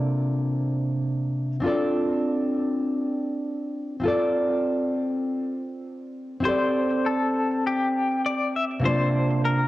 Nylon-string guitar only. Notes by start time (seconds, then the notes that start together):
Already playing: C3 A#3 D4 F4 A4 D5
1.60 C4 D4 F4
1.66 A4 D5
4.00 C4 E4 F4
4.05 A4 D5
6.40 C4 E4
6.45 G4 A4 D5
8.80 C3 A#3 D4
8.84 F4 D5 A5